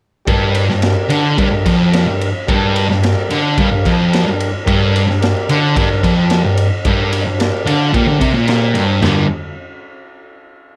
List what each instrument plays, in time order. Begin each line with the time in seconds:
0.25 distorted electric guitar G2, transistor combo organ G4 A#4 D5, kick, ride
0.55 ride
0.70 distorted electric guitar G2, snare
0.82 transistor combo organ G4 A#4 D5, snare, ride
1.09 distorted electric guitar D3, ride
1.37 distorted electric guitar G2, transistor combo organ G4 A#4 D5, kick, ride
1.51 distorted electric guitar G2
1.66 distorted electric guitar F2, kick, snare, ride
1.92 transistor combo organ G4 A#4 D5, snare, ride
2.07 distorted electric guitar G2
2.21 ride
2.47 distorted electric guitar G2, transistor combo organ G4 A#4 D5, kick, ride
2.76 ride
2.90 distorted electric guitar G2, snare
3.02 transistor combo organ G4 A#4 D5, snare, ride
3.30 distorted electric guitar D3, ride
3.58 distorted electric guitar G2, transistor combo organ G4 A#4 F5, kick, ride
3.71 distorted electric guitar G2
3.85 distorted electric guitar F2, kick, ride
4.12 transistor combo organ G4 A#4 D5, snare, ride
4.26 distorted electric guitar G2
4.40 ride
4.64 distorted electric guitar G2, transistor combo organ G4 A#4 D5, kick, ride
4.96 ride
5.08 distorted electric guitar G2, snare
5.20 transistor combo organ G4 A#4 D5, snare, ride
5.49 distorted electric guitar D3, ride
5.76 distorted electric guitar G2, transistor combo organ G4 A#4 D5, kick, ride
5.90 distorted electric guitar G2
6.03 distorted electric guitar F2, kick, ride
6.30 transistor combo organ G4 A#4 D5, snare, ride
6.44 distorted electric guitar G2
6.57 ride
6.85 distorted electric guitar G2, transistor combo organ G4 A#4 D5, kick, ride
7.13 ride
7.26 distorted electric guitar G2
7.38 transistor combo organ G4 A#4 D5, snare, ride
7.66 distorted electric guitar D3, transistor combo organ F5, ride
7.93 distorted electric guitar A#2, transistor combo organ G4 A#4 D5 G5, kick, ride
8.08 distorted electric guitar D3
8.20 distorted electric guitar C3, transistor combo organ A#5, kick, ride
8.34 distorted electric guitar A#2
8.46 transistor combo organ G4 A#4 D5 A#5, snare, ride
8.75 distorted electric guitar G2, ride
9.02 distorted electric guitar G2 D3 G3, transistor combo organ G4 A#4 D5, snare, floor tom, china